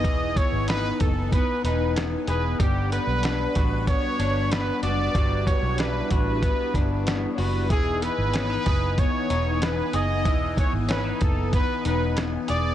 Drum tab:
HH |xxxxxxxx|xxxxxxxx|xxxxxxxo|xxxxxxxx|
SD |--o---o-|--oo--o-|--o---o-|--oo--o-|
BD |oo-oo---|o--oo---|oo-ooo--|o--oo---|

HH |xxxxxxxx|
SD |--o---o-|
BD |oo-oo---|